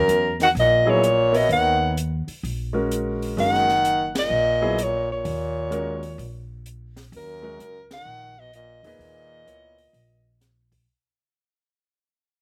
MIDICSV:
0, 0, Header, 1, 7, 480
1, 0, Start_track
1, 0, Tempo, 469116
1, 1531, Time_signature, 4, 2, 24, 8
1, 12704, End_track
2, 0, Start_track
2, 0, Title_t, "Soprano saxophone"
2, 0, Program_c, 0, 64
2, 0, Note_on_c, 0, 70, 88
2, 373, Note_off_c, 0, 70, 0
2, 441, Note_on_c, 0, 78, 87
2, 508, Note_off_c, 0, 78, 0
2, 611, Note_on_c, 0, 75, 91
2, 919, Note_on_c, 0, 73, 81
2, 934, Note_off_c, 0, 75, 0
2, 1393, Note_on_c, 0, 75, 79
2, 1409, Note_off_c, 0, 73, 0
2, 1545, Note_off_c, 0, 75, 0
2, 1560, Note_on_c, 0, 78, 87
2, 1994, Note_off_c, 0, 78, 0
2, 3482, Note_on_c, 0, 78, 104
2, 4221, Note_off_c, 0, 78, 0
2, 4287, Note_on_c, 0, 75, 96
2, 4942, Note_on_c, 0, 73, 79
2, 4958, Note_off_c, 0, 75, 0
2, 5232, Note_off_c, 0, 73, 0
2, 5242, Note_on_c, 0, 73, 81
2, 6623, Note_off_c, 0, 73, 0
2, 7338, Note_on_c, 0, 70, 91
2, 8068, Note_off_c, 0, 70, 0
2, 8122, Note_on_c, 0, 78, 110
2, 8591, Note_on_c, 0, 75, 92
2, 8607, Note_off_c, 0, 78, 0
2, 8743, Note_off_c, 0, 75, 0
2, 8754, Note_on_c, 0, 75, 81
2, 9036, Note_off_c, 0, 75, 0
2, 9077, Note_on_c, 0, 75, 93
2, 10624, Note_off_c, 0, 75, 0
2, 12704, End_track
3, 0, Start_track
3, 0, Title_t, "Grand piano"
3, 0, Program_c, 1, 0
3, 872, Note_on_c, 1, 54, 68
3, 872, Note_on_c, 1, 59, 59
3, 884, Note_on_c, 1, 64, 63
3, 889, Note_on_c, 1, 68, 73
3, 1027, Note_off_c, 1, 54, 0
3, 1028, Note_off_c, 1, 59, 0
3, 1034, Note_off_c, 1, 64, 0
3, 1036, Note_off_c, 1, 68, 0
3, 1353, Note_on_c, 1, 59, 66
3, 1357, Note_on_c, 1, 70, 60
3, 1359, Note_on_c, 1, 76, 56
3, 1373, Note_on_c, 1, 73, 66
3, 1972, Note_off_c, 1, 59, 0
3, 1974, Note_off_c, 1, 70, 0
3, 1975, Note_off_c, 1, 76, 0
3, 1982, Note_off_c, 1, 73, 0
3, 2794, Note_on_c, 1, 56, 57
3, 2798, Note_on_c, 1, 61, 57
3, 2805, Note_on_c, 1, 66, 55
3, 2808, Note_on_c, 1, 70, 67
3, 3413, Note_off_c, 1, 56, 0
3, 3415, Note_off_c, 1, 61, 0
3, 3418, Note_off_c, 1, 66, 0
3, 3419, Note_off_c, 1, 70, 0
3, 3452, Note_on_c, 1, 61, 54
3, 3453, Note_on_c, 1, 56, 58
3, 3460, Note_on_c, 1, 66, 51
3, 3467, Note_on_c, 1, 70, 61
3, 3735, Note_off_c, 1, 61, 0
3, 3736, Note_off_c, 1, 56, 0
3, 3739, Note_off_c, 1, 66, 0
3, 3743, Note_off_c, 1, 70, 0
3, 4721, Note_on_c, 1, 59, 63
3, 4723, Note_on_c, 1, 54, 64
3, 4726, Note_on_c, 1, 64, 68
3, 4731, Note_on_c, 1, 68, 77
3, 4873, Note_off_c, 1, 59, 0
3, 4874, Note_off_c, 1, 54, 0
3, 4875, Note_off_c, 1, 64, 0
3, 4877, Note_off_c, 1, 68, 0
3, 5836, Note_on_c, 1, 61, 56
3, 5839, Note_on_c, 1, 56, 64
3, 5845, Note_on_c, 1, 66, 57
3, 5853, Note_on_c, 1, 70, 71
3, 6127, Note_off_c, 1, 61, 0
3, 6129, Note_off_c, 1, 56, 0
3, 6132, Note_off_c, 1, 66, 0
3, 6136, Note_off_c, 1, 70, 0
3, 7593, Note_on_c, 1, 56, 65
3, 7596, Note_on_c, 1, 61, 55
3, 7604, Note_on_c, 1, 66, 57
3, 7607, Note_on_c, 1, 70, 72
3, 7748, Note_off_c, 1, 56, 0
3, 7749, Note_off_c, 1, 61, 0
3, 7753, Note_off_c, 1, 66, 0
3, 7755, Note_off_c, 1, 70, 0
3, 9044, Note_on_c, 1, 46, 64
3, 9049, Note_on_c, 1, 63, 59
3, 9051, Note_on_c, 1, 68, 59
3, 9065, Note_on_c, 1, 71, 69
3, 9656, Note_off_c, 1, 46, 0
3, 9659, Note_off_c, 1, 63, 0
3, 9660, Note_off_c, 1, 68, 0
3, 9667, Note_off_c, 1, 71, 0
3, 9674, Note_on_c, 1, 59, 61
3, 9678, Note_on_c, 1, 64, 54
3, 9687, Note_on_c, 1, 70, 57
3, 9689, Note_on_c, 1, 73, 66
3, 9965, Note_off_c, 1, 59, 0
3, 9967, Note_off_c, 1, 64, 0
3, 9972, Note_off_c, 1, 70, 0
3, 9972, Note_off_c, 1, 73, 0
3, 12704, End_track
4, 0, Start_track
4, 0, Title_t, "Trombone"
4, 0, Program_c, 2, 57
4, 0, Note_on_c, 2, 42, 82
4, 372, Note_off_c, 2, 42, 0
4, 421, Note_on_c, 2, 51, 78
4, 492, Note_off_c, 2, 51, 0
4, 597, Note_on_c, 2, 46, 79
4, 919, Note_off_c, 2, 46, 0
4, 919, Note_on_c, 2, 46, 82
4, 1407, Note_on_c, 2, 47, 72
4, 1423, Note_off_c, 2, 46, 0
4, 1550, Note_off_c, 2, 47, 0
4, 1556, Note_on_c, 2, 51, 66
4, 1991, Note_off_c, 2, 51, 0
4, 3472, Note_on_c, 2, 51, 86
4, 4216, Note_off_c, 2, 51, 0
4, 4292, Note_on_c, 2, 46, 81
4, 4933, Note_off_c, 2, 46, 0
4, 4933, Note_on_c, 2, 46, 66
4, 5227, Note_off_c, 2, 46, 0
4, 5251, Note_on_c, 2, 46, 78
4, 6628, Note_off_c, 2, 46, 0
4, 7315, Note_on_c, 2, 42, 85
4, 8057, Note_off_c, 2, 42, 0
4, 8117, Note_on_c, 2, 51, 82
4, 8576, Note_on_c, 2, 47, 79
4, 8591, Note_off_c, 2, 51, 0
4, 8736, Note_off_c, 2, 47, 0
4, 8744, Note_on_c, 2, 46, 75
4, 9030, Note_off_c, 2, 46, 0
4, 9055, Note_on_c, 2, 46, 87
4, 10613, Note_off_c, 2, 46, 0
4, 12704, End_track
5, 0, Start_track
5, 0, Title_t, "Upright bass"
5, 0, Program_c, 3, 32
5, 79, Note_on_c, 3, 40, 68
5, 531, Note_off_c, 3, 40, 0
5, 561, Note_on_c, 3, 34, 81
5, 1486, Note_off_c, 3, 34, 0
5, 1526, Note_on_c, 3, 39, 84
5, 2283, Note_off_c, 3, 39, 0
5, 2490, Note_on_c, 3, 34, 75
5, 3410, Note_off_c, 3, 34, 0
5, 3448, Note_on_c, 3, 30, 79
5, 4369, Note_off_c, 3, 30, 0
5, 4402, Note_on_c, 3, 34, 78
5, 5326, Note_off_c, 3, 34, 0
5, 5372, Note_on_c, 3, 39, 86
5, 6291, Note_off_c, 3, 39, 0
5, 6324, Note_on_c, 3, 34, 84
5, 7246, Note_off_c, 3, 34, 0
5, 7286, Note_on_c, 3, 39, 83
5, 7735, Note_off_c, 3, 39, 0
5, 7775, Note_on_c, 3, 37, 66
5, 8219, Note_off_c, 3, 37, 0
5, 8239, Note_on_c, 3, 34, 77
5, 8998, Note_off_c, 3, 34, 0
5, 9034, Note_on_c, 3, 40, 66
5, 9193, Note_off_c, 3, 40, 0
5, 9199, Note_on_c, 3, 39, 80
5, 9650, Note_off_c, 3, 39, 0
5, 9688, Note_on_c, 3, 37, 68
5, 10135, Note_off_c, 3, 37, 0
5, 10162, Note_on_c, 3, 34, 72
5, 11084, Note_off_c, 3, 34, 0
5, 12704, End_track
6, 0, Start_track
6, 0, Title_t, "Muted upright bass strokes"
6, 2329, Note_on_c, 9, 29, 36
6, 2431, Note_off_c, 9, 29, 0
6, 12704, End_track
7, 0, Start_track
7, 0, Title_t, "Drums"
7, 91, Note_on_c, 9, 42, 46
7, 193, Note_off_c, 9, 42, 0
7, 408, Note_on_c, 9, 38, 34
7, 410, Note_on_c, 9, 46, 37
7, 510, Note_off_c, 9, 38, 0
7, 512, Note_off_c, 9, 46, 0
7, 578, Note_on_c, 9, 46, 41
7, 681, Note_off_c, 9, 46, 0
7, 1060, Note_on_c, 9, 42, 47
7, 1162, Note_off_c, 9, 42, 0
7, 1375, Note_on_c, 9, 46, 39
7, 1477, Note_off_c, 9, 46, 0
7, 1540, Note_on_c, 9, 46, 41
7, 1642, Note_off_c, 9, 46, 0
7, 2020, Note_on_c, 9, 42, 51
7, 2122, Note_off_c, 9, 42, 0
7, 2333, Note_on_c, 9, 46, 34
7, 2436, Note_off_c, 9, 46, 0
7, 2502, Note_on_c, 9, 46, 41
7, 2605, Note_off_c, 9, 46, 0
7, 2982, Note_on_c, 9, 42, 49
7, 3085, Note_off_c, 9, 42, 0
7, 3298, Note_on_c, 9, 46, 38
7, 3401, Note_off_c, 9, 46, 0
7, 3461, Note_on_c, 9, 46, 42
7, 3564, Note_off_c, 9, 46, 0
7, 3621, Note_on_c, 9, 38, 27
7, 3723, Note_off_c, 9, 38, 0
7, 3773, Note_on_c, 9, 38, 39
7, 3875, Note_off_c, 9, 38, 0
7, 3936, Note_on_c, 9, 42, 47
7, 4039, Note_off_c, 9, 42, 0
7, 4248, Note_on_c, 9, 38, 72
7, 4250, Note_on_c, 9, 51, 67
7, 4350, Note_off_c, 9, 38, 0
7, 4352, Note_off_c, 9, 51, 0
7, 4895, Note_on_c, 9, 42, 49
7, 4998, Note_off_c, 9, 42, 0
7, 5372, Note_on_c, 9, 46, 41
7, 5475, Note_off_c, 9, 46, 0
7, 5851, Note_on_c, 9, 42, 48
7, 5953, Note_off_c, 9, 42, 0
7, 6168, Note_on_c, 9, 46, 36
7, 6270, Note_off_c, 9, 46, 0
7, 6336, Note_on_c, 9, 46, 37
7, 6438, Note_off_c, 9, 46, 0
7, 6813, Note_on_c, 9, 42, 50
7, 6915, Note_off_c, 9, 42, 0
7, 7127, Note_on_c, 9, 38, 48
7, 7129, Note_on_c, 9, 46, 36
7, 7229, Note_off_c, 9, 38, 0
7, 7231, Note_off_c, 9, 46, 0
7, 7294, Note_on_c, 9, 46, 44
7, 7397, Note_off_c, 9, 46, 0
7, 7778, Note_on_c, 9, 42, 48
7, 7881, Note_off_c, 9, 42, 0
7, 8090, Note_on_c, 9, 38, 71
7, 8092, Note_on_c, 9, 51, 58
7, 8193, Note_off_c, 9, 38, 0
7, 8195, Note_off_c, 9, 51, 0
7, 8732, Note_on_c, 9, 42, 48
7, 8835, Note_off_c, 9, 42, 0
7, 9048, Note_on_c, 9, 46, 40
7, 9150, Note_off_c, 9, 46, 0
7, 9214, Note_on_c, 9, 46, 42
7, 9317, Note_off_c, 9, 46, 0
7, 9695, Note_on_c, 9, 42, 48
7, 9798, Note_off_c, 9, 42, 0
7, 10011, Note_on_c, 9, 46, 38
7, 10113, Note_off_c, 9, 46, 0
7, 10172, Note_on_c, 9, 46, 37
7, 10274, Note_off_c, 9, 46, 0
7, 10653, Note_on_c, 9, 38, 35
7, 10655, Note_on_c, 9, 42, 48
7, 10756, Note_off_c, 9, 38, 0
7, 10758, Note_off_c, 9, 42, 0
7, 10967, Note_on_c, 9, 36, 54
7, 10971, Note_on_c, 9, 46, 37
7, 11069, Note_off_c, 9, 36, 0
7, 11073, Note_off_c, 9, 46, 0
7, 12704, End_track
0, 0, End_of_file